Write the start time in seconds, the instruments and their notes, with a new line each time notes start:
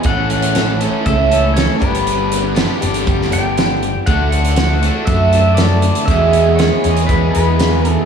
0.03 picked electric bass A1, steel-string acoustic guitar A2, pedal steel guitar F#5, kick, closed hi-hat
0.08 steel-string acoustic guitar E3 A3 C#4 A4
0.30 pedal steel guitar F#5, closed hi-hat
0.42 closed hi-hat
0.55 steel-string acoustic guitar E3 A3 C#4 A4, snare, closed hi-hat
0.81 overdriven electric guitar E3, steel-string acoustic guitar A3 C#4 A4, closed hi-hat
0.85 overdriven electric guitar A2
1.05 picked electric bass C#2, steel-string acoustic guitar E3 A3 C#4 A4, pedal steel guitar E5, kick, closed hi-hat
1.31 steel-string acoustic guitar A3 C#4 A4, closed hi-hat
1.54 steel-string acoustic guitar E3 A3 C#4, pedal steel guitar C#5, snare, closed hi-hat
1.58 steel-string acoustic guitar A4
1.78 picked electric bass G1, steel-string acoustic guitar G2 D3 G3 B3 D4 G4, pedal steel guitar B4, kick, closed hi-hat
1.84 overdriven electric guitar D4 G4
1.95 closed hi-hat
2.07 closed hi-hat
2.32 closed hi-hat
2.55 overdriven electric guitar G2 D3, steel-string acoustic guitar G3 B3 D4 G4, snare, closed hi-hat
2.59 overdriven electric guitar G3
2.81 picked electric bass G1, steel-string acoustic guitar G3 B3 D4 G4, closed hi-hat
2.94 closed hi-hat
3.06 picked electric bass G1, steel-string acoustic guitar G3 B3 D4 G4, kick, closed hi-hat
3.22 snare
3.30 steel-string acoustic guitar G3 B3 D4 G4, pedal steel guitar G5, closed hi-hat
3.34 picked electric bass G1
3.57 steel-string acoustic guitar G3 B3 D4 G4, snare, closed hi-hat
3.83 closed hi-hat
4.06 picked electric bass D2, steel-string acoustic guitar D3 A3 D4 F#4, pedal steel guitar F#5, kick, closed hi-hat
4.31 pedal steel guitar F#5, closed hi-hat
4.45 closed hi-hat
4.56 steel-string acoustic guitar D3 A3 D4 F#4, snare, closed hi-hat
4.83 steel-string acoustic guitar A3 D4 F#4, closed hi-hat
4.87 overdriven electric guitar D3
5.05 picked electric bass F#2, steel-string acoustic guitar D3, pedal steel guitar E5, kick, closed hi-hat
5.11 steel-string acoustic guitar A3 D4 F#4
5.33 steel-string acoustic guitar A3 D4 F#4, closed hi-hat
5.55 pedal steel guitar D5, snare, closed hi-hat
5.60 steel-string acoustic guitar D3 A3 D4 F#4
5.82 closed hi-hat
5.95 closed hi-hat
6.06 picked electric bass E2, steel-string acoustic guitar E2, pedal steel guitar E5, kick, closed hi-hat
6.10 steel-string acoustic guitar B2 E3 G#3 B3 G#4
6.33 closed hi-hat
6.56 steel-string acoustic guitar E3, pedal steel guitar C#5, closed hi-hat
6.60 steel-string acoustic guitar G#3 B3 G#4, snare
6.84 picked electric bass E2, overdriven electric guitar E2 B2, steel-string acoustic guitar E3 G#3 B3 G#4, closed hi-hat
6.97 closed hi-hat
7.07 picked electric bass E2, steel-string acoustic guitar E3, pedal steel guitar B4, kick, closed hi-hat
7.11 steel-string acoustic guitar G#3 B3 G#4
7.31 picked electric bass E2, pedal steel guitar B4, closed hi-hat
7.36 steel-string acoustic guitar E3 G#3 B3 G#4
7.59 steel-string acoustic guitar E3 G#3 B3 G#4, snare, closed hi-hat
7.85 closed hi-hat
7.90 pedal steel guitar A4